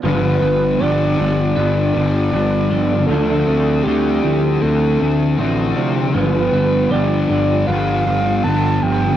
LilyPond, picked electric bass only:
\new Staff \with { instrumentName = "Picked electric bass" } { \clef bass \time 4/4 \key g \mixolydian \tempo 4 = 78 g,,8 g,,8 g,,8 g,,8 g,,8 g,,8 g,,8 g,,8 | d,8 d,8 d,8 d,8 d,8 d,8 a,,8 c8 | g,,8 g,,8 g,,8 g,,8 g,,8 g,,8 g,,8 g,,8 | }